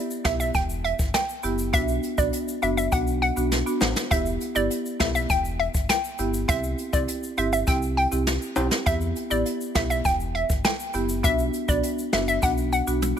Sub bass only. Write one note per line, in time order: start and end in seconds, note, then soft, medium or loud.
0.25 0.51 B1 loud
0.55 0.94 E1 medium
0.99 1.12 G1 medium
1.44 1.75 F#1 medium
1.73 1.99 B1 loud
2.18 2.31 B1 medium
2.63 2.89 F#1 loud
2.92 3.31 B1 loud
3.37 3.63 B1 loud
3.81 3.94 A1 medium
4.11 4.37 E1 loud
4.56 4.69 G1 medium
5.00 5.26 B1 loud
5.30 5.69 E1 medium
5.74 5.87 G1 medium
6.19 6.45 G1 medium
6.49 6.75 C2 loud
6.93 7.06 C2 medium
7.38 7.64 G1 loud
7.67 8.06 C2 loud
8.12 8.38 C2 loud
8.57 8.70 B1 loud
8.86 9.12 E2 loud
9.31 9.44 A1 loud
9.75 10.01 B1 loud
10.05 10.44 E1 medium
10.50 10.63 G1 loud
10.94 11.25 F#1 medium
11.24 11.50 B1 loud
11.68 11.82 B1 loud
12.13 12.39 F#1 loud
12.43 12.82 B1 loud
12.87 13.13 B1 loud